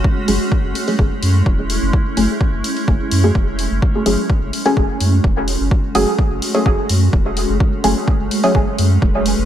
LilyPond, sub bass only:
\new Staff \with { instrumentName = "Sub bass" } { \clef bass \time 4/4 \key fis \minor \tempo 4 = 127 r8 fis,,16 r8 fis,,16 r8 fis,,16 r16 fis,8 e,,8. fis,,16 | r8 fis,,16 r8 fis,,16 r8 fis,,16 r16 fis,8 e,,8. fis,,16 | r8 fis,,16 r8 fis,,16 r8 fis,,16 r16 fis,8 e,,8. fis,,16 | r8 fis,,16 r8 fis,,16 r8 fis,,16 r16 fis,8 e,,8. fis,,16 |
r8 fis,,16 r8 fis,,16 r8 fis,,16 r16 fis,8 e,,8. fis,,16 | }